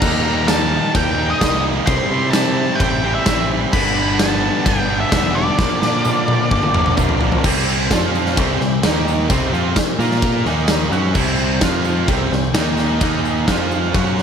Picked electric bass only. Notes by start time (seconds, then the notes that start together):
0.02 D#2
0.95 D#2
1.42 C2
1.88 C2
2.10 C3
2.80 A1
3.26 A1
3.73 G1
4.66 G1
5.12 E1
5.58 A#1
5.82 A#2
6.51 G1
6.98 A#1
7.44 C2
7.91 F2
8.38 C2
8.61 C2
8.84 D#2
9.30 C2
9.52 F2
9.99 A#2
10.46 D#2
10.92 F#2
11.15 C2
11.62 F2
12.08 C2
12.31 C2
12.55 D#2
13.02 D#2
13.48 F2
13.95 F#2